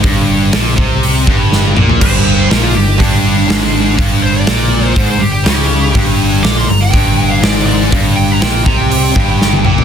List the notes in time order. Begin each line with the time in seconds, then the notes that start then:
0.03 G1 G2, kick, open hi-hat
0.53 A#1 A#2, snare, open hi-hat
0.76 C2 C3, kick
1.03 open hi-hat
1.25 G1 G2, kick
1.52 snare
1.75 A#1 A#2, mid tom
1.89 floor tom
2.01 G1 G2 C5, kick, crash
2.50 A#1 A#2 A#4, snare, open hi-hat
2.61 F4
2.74 G1 G2 G4
2.98 G1 G2 D4, kick, open hi-hat
3.49 G#1 G#2, snare, open hi-hat
3.97 G1 G2, kick, open hi-hat
4.23 C5
4.33 D5
4.47 A#1 A#2, snare, open hi-hat
4.85 C5
4.96 G#1 G#2, kick, open hi-hat
5.10 C5
5.20 G1 G2 G4
5.32 G4
5.46 C#2 C#3 G4, snare, open hi-hat
5.95 G1 G2, kick, open hi-hat
6.42 A#1 A#2 D6, snare, open hi-hat
6.57 C6
6.69 G1 G2 A#5
6.81 G5
6.93 G1 G2, kick, open hi-hat
7.30 F5
7.42 G#1 G#2 D5, snare, open hi-hat
7.66 D5
7.92 G1 G2, kick, open hi-hat
8.16 G5
8.31 A#5
8.41 A#1 A#2 G5, snare, open hi-hat
8.53 G5
8.66 C2 C3 A#5, kick
8.77 G5
8.89 G5, open hi-hat
9.14 G1 G2, kick
9.41 snare
9.53 high tom
9.63 A#1 A#2, mid tom
9.78 floor tom